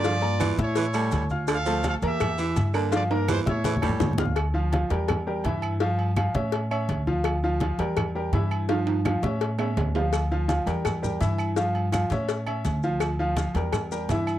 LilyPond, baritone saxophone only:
\new Staff \with { instrumentName = "Baritone saxophone" } { \clef bass \time 4/4 \key d \minor \tempo 4 = 166 d4 e4 e8 g4. | d8 f4. r8 e4 d8~ | d4 e4 e8 g4. | r1 |
r1 | r1 | r1 | r1 |
r1 | r1 | }